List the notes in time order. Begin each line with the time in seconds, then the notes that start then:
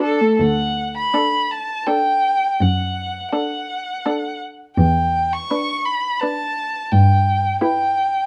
0.00 D4 A4
0.21 A3
0.39 D2 F#5
0.97 B5
1.14 D4 A4
1.51 A5
1.87 D4 A4 G5
2.61 F#2 F#5
3.32 D4 A4 F#5
4.06 D4 A4
4.77 E2 G5
5.32 C#6
5.51 D4 B4
5.85 B5
6.20 D4 B4 A5
6.92 G2 G5
7.61 E4 B4 G5